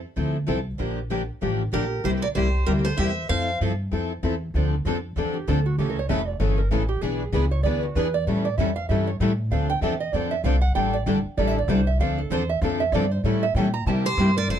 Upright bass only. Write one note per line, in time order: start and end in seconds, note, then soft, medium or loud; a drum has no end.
0.16 0.43 D2 medium
0.48 0.74 C2 medium
0.79 1.29 A#1 medium
1.42 1.68 A1 medium
1.73 1.99 A#1 medium
2.04 2.29 C2 medium
2.36 2.62 C2 medium
2.67 2.94 D2 medium
2.98 3.25 E2 medium
3.29 3.54 F2 medium
3.61 3.87 G2 medium
3.92 4.18 F2 medium
4.23 4.49 E2 medium
4.54 4.84 D2 medium
4.85 5.15 F2 medium
5.16 5.46 E2 medium
5.48 5.78 D2 medium
5.78 6.09 C#2 medium
6.09 6.39 F1 medium
6.40 6.70 G1 medium
6.72 7.01 A1 medium
7.01 7.32 B1 medium
7.32 7.62 C#2 medium
7.63 7.94 D2 medium
7.95 8.26 E2 loud
8.27 8.57 A2 medium
8.58 8.88 F2 medium
8.89 9.19 G2 medium
9.20 9.50 A2 medium
9.51 9.81 D2 medium
9.81 10.12 E2 medium
10.13 10.43 F2 medium
10.44 10.74 C2 medium
10.75 11.05 A1 medium
11.06 11.23 G1 medium
11.25 muted upright bass stroke soft
11.37 11.67 A1 medium
11.68 11.98 C2 loud
11.99 12.30 D2 medium
12.30 12.61 E2 medium
12.62 12.91 F2 medium
12.92 13.23 G2 loud
13.24 13.54 A2 medium
13.55 13.85 A#2 medium
13.86 14.17 C3 loud
14.17 14.47 G2 loud
14.48 14.59 F1 medium